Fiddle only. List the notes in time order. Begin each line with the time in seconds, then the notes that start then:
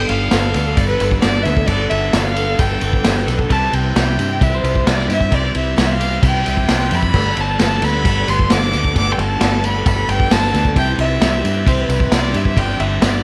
0.09 F5
0.77 D5
0.88 B4
1.20 D5
1.43 E5
1.66 D5
1.89 E5
2.23 F5
2.59 G5
3.51 A5
3.74 G5
4.42 E5
4.54 C5
4.89 D5
5.12 E5
5.34 D5
5.56 E5
5.83 E5
5.92 F5
6.27 G5
6.95 B5
7.40 A5
7.62 A5
7.84 B5
8.30 C6
8.52 D6
8.98 D6
9.12 G5
9.20 A5
9.65 B5
9.88 B5
10.09 G5
10.32 A5
10.78 G5
11.00 E5
11.67 C5
11.80 B4
12.14 D5
12.37 E5
12.47 E5
12.59 G5
12.80 E5
13.02 D5